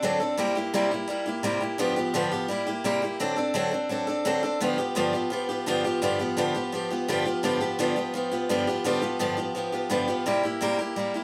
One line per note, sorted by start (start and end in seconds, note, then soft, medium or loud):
0.02 0.20 D3 medium
0.02 0.21 F#3 loud
0.02 0.21 C4 medium
0.02 0.20 D4 loud
0.02 0.19 A4 loud
0.20 0.38 C4 medium
0.20 0.39 D4 medium
0.20 0.38 A4 medium
0.37 0.55 C3 medium
0.37 0.56 G3 medium
0.37 0.56 A#3 medium
0.37 0.56 E4 medium
0.37 0.54 G4 loud
0.55 0.73 A#3 medium
0.55 0.74 E4 medium
0.55 0.73 G4 medium
0.74 0.91 C3 medium
0.74 0.91 G3 loud
0.74 0.91 A#3 medium
0.74 0.92 E4 loud
0.74 0.90 G4 medium
0.91 1.08 A#3 soft
0.91 1.09 E4 medium
0.91 1.09 G4 medium
1.08 1.26 G3 medium
1.08 1.26 A#3 medium
1.08 1.26 E4 medium
1.08 1.24 G4 medium
1.26 1.43 A#3 medium
1.26 1.43 E4 medium
1.26 1.43 G4 medium
1.43 1.61 C3 medium
1.43 1.61 G3 loud
1.43 1.62 A#3 medium
1.43 1.61 E4 loud
1.43 1.59 G4 loud
1.60 1.79 A#3 soft
1.60 1.79 E4 medium
1.60 1.78 G4 medium
1.78 1.96 G2 medium
1.78 1.97 D3 medium
1.78 1.97 F3 medium
1.78 1.97 B3 loud
1.78 1.96 F4 medium
1.78 1.95 G4 loud
1.96 2.14 F3 medium
1.96 2.14 B3 medium
1.96 2.15 F4 medium
1.96 2.14 G4 medium
2.14 2.32 G2 medium
2.14 2.32 D3 medium
2.14 2.32 F3 loud
2.14 2.32 B3 loud
2.14 2.31 F4 loud
2.14 2.30 G4 loud
2.32 2.48 F3 medium
2.32 2.49 B3 medium
2.32 2.50 F4 medium
2.32 2.49 G4 medium
2.48 2.66 G3 medium
2.48 2.67 A#3 medium
2.48 2.67 E4 medium
2.48 2.65 G4 medium
2.67 2.84 A#3 medium
2.67 2.84 E4 medium
2.67 2.84 G4 medium
2.84 3.02 C3 medium
2.84 3.02 G3 loud
2.84 3.03 A#3 medium
2.84 3.02 E4 loud
2.84 3.01 G4 loud
3.02 3.20 A#3 soft
3.02 3.20 E4 medium
3.02 3.20 G4 medium
3.20 3.37 D3 medium
3.20 3.38 F#3 loud
3.20 3.38 C4 loud
3.20 3.37 D4 loud
3.20 3.35 A4 loud
3.36 3.54 C4 medium
3.36 3.54 D4 medium
3.36 3.55 A4 medium
3.54 3.72 D3 medium
3.54 3.72 F#3 medium
3.54 3.73 C4 loud
3.54 3.72 D4 loud
3.54 3.70 A4 loud
3.71 3.89 C4 medium
3.71 3.90 D4 medium
3.71 3.90 A4 medium
3.89 4.07 F#3 medium
3.89 4.08 C4 medium
3.89 4.07 D4 medium
3.89 4.06 A4 medium
4.07 4.25 C4 soft
4.07 4.25 D4 medium
4.07 4.25 A4 medium
4.25 4.43 D3 loud
4.25 4.43 F#3 medium
4.25 4.43 C4 loud
4.25 4.43 D4 loud
4.25 4.42 A4 medium
4.43 4.61 C4 medium
4.43 4.61 D4 medium
4.43 4.61 A4 medium
4.61 4.78 G2 medium
4.61 4.79 D3 loud
4.61 4.79 F3 medium
4.61 4.79 B3 medium
4.61 4.77 F4 loud
4.61 4.77 G4 loud
4.78 4.95 F3 medium
4.78 4.96 B3 medium
4.78 4.96 F4 medium
4.78 4.96 G4 medium
4.95 5.13 G2 medium
4.95 5.14 D3 medium
4.95 5.14 F3 loud
4.95 5.14 B3 medium
4.95 5.13 F4 loud
4.95 5.12 G4 loud
5.13 5.29 F3 medium
5.13 5.31 B3 medium
5.13 5.31 F4 medium
5.13 5.31 G4 medium
5.30 5.48 F3 medium
5.30 5.49 B3 medium
5.30 5.49 F4 medium
5.30 5.48 G4 medium
5.49 5.66 F3 soft
5.49 5.66 B3 medium
5.49 5.67 F4 medium
5.49 5.66 G4 medium
5.66 5.84 G2 medium
5.66 5.84 D3 medium
5.66 5.85 F3 medium
5.66 5.85 B3 medium
5.66 5.84 F4 loud
5.66 5.83 G4 loud
5.84 6.02 F3 medium
5.84 6.02 B3 medium
5.84 6.02 F4 medium
5.84 6.02 G4 medium
6.02 6.19 G2 medium
6.02 6.20 D3 medium
6.02 6.20 F3 loud
6.02 6.20 B3 loud
6.02 6.19 F4 loud
6.02 6.18 G4 loud
6.19 6.36 F3 soft
6.19 6.37 B3 medium
6.19 6.37 F4 medium
6.19 6.37 G4 medium
6.37 6.55 G2 medium
6.37 6.55 D3 medium
6.37 6.55 F3 medium
6.37 6.55 B3 loud
6.37 6.54 F4 loud
6.37 6.53 G4 loud
6.55 6.71 F3 soft
6.55 6.73 B3 soft
6.55 6.73 F4 medium
6.55 6.72 G4 medium
6.72 6.90 F3 medium
6.72 6.91 B3 medium
6.72 6.90 F4 medium
6.72 6.89 G4 medium
6.91 7.08 F3 soft
6.91 7.08 B3 medium
6.91 7.08 F4 medium
6.91 7.08 G4 medium
7.08 7.26 G2 medium
7.08 7.26 D3 medium
7.08 7.26 F3 medium
7.08 7.26 B3 medium
7.08 7.25 F4 loud
7.08 7.24 G4 loud
7.26 7.43 F3 medium
7.26 7.43 B3 medium
7.26 7.44 F4 medium
7.26 7.43 G4 medium
7.43 7.61 G2 medium
7.43 7.61 D3 medium
7.43 7.61 F3 loud
7.43 7.61 B3 medium
7.43 7.60 F4 loud
7.43 7.59 G4 loud
7.61 7.78 F3 medium
7.61 7.79 B3 medium
7.61 7.79 F4 medium
7.61 7.78 G4 medium
7.79 7.96 G2 loud
7.79 7.96 D3 medium
7.79 7.97 F3 medium
7.79 7.96 B3 loud
7.79 7.96 F4 medium
7.79 7.95 G4 loud
7.96 8.12 F3 soft
7.96 8.14 B3 soft
7.96 8.14 F4 medium
7.96 8.14 G4 medium
8.14 8.31 F3 medium
8.14 8.32 B3 medium
8.14 8.31 F4 medium
8.14 8.30 G4 medium
8.31 8.49 F3 soft
8.31 8.49 B3 medium
8.31 8.50 F4 medium
8.31 8.49 G4 medium
8.49 8.67 G2 medium
8.49 8.67 D3 medium
8.49 8.67 F3 loud
8.49 8.67 B3 medium
8.49 8.67 F4 medium
8.49 8.66 G4 loud
8.67 8.84 F3 medium
8.67 8.84 B3 medium
8.67 8.85 F4 medium
8.67 8.85 G4 medium
8.84 9.02 G2 medium
8.84 9.02 D3 medium
8.84 9.03 F3 medium
8.84 9.02 B3 medium
8.84 9.01 F4 loud
8.84 9.00 G4 loud
9.01 9.19 F3 medium
9.01 9.19 B3 medium
9.01 9.20 F4 medium
9.01 9.19 G4 medium
9.19 9.37 G2 medium
9.19 9.38 D3 medium
9.19 9.38 F3 loud
9.19 9.38 B3 medium
9.19 9.37 F4 loud
9.19 9.36 G4 loud
9.37 9.54 F3 soft
9.37 9.55 B3 medium
9.37 9.55 F4 medium
9.37 9.55 G4 medium
9.55 9.73 F3 medium
9.55 9.73 B3 medium
9.55 9.72 F4 medium
9.55 9.71 G4 medium
9.72 9.90 F3 soft
9.72 9.90 B3 medium
9.72 9.90 F4 medium
9.72 9.90 G4 medium
9.90 10.08 G2 medium
9.90 10.08 D3 medium
9.90 10.08 F3 medium
9.90 10.08 B3 loud
9.90 10.07 F4 medium
9.90 10.06 G4 loud
10.08 10.26 F3 medium
10.08 10.26 B3 medium
10.08 10.26 F4 medium
10.08 10.26 G4 medium
10.26 10.44 C3 medium
10.26 10.44 G3 medium
10.26 10.44 A#3 medium
10.26 10.44 E4 medium
10.26 10.42 G4 medium
10.43 10.61 A#3 soft
10.43 10.61 E4 medium
10.43 10.61 G4 medium
10.61 10.79 C3 medium
10.61 10.79 G3 medium
10.61 10.79 A#3 medium
10.61 10.79 E4 medium
10.61 10.77 G4 loud
10.79 10.96 A#3 soft
10.79 10.97 E4 medium
10.79 10.97 G4 medium
10.96 11.14 G3 medium
10.96 11.15 A#3 medium
10.96 11.14 E4 medium
10.96 11.13 G4 medium
11.14 11.24 A#3 soft
11.14 11.24 E4 medium
11.14 11.24 G4 medium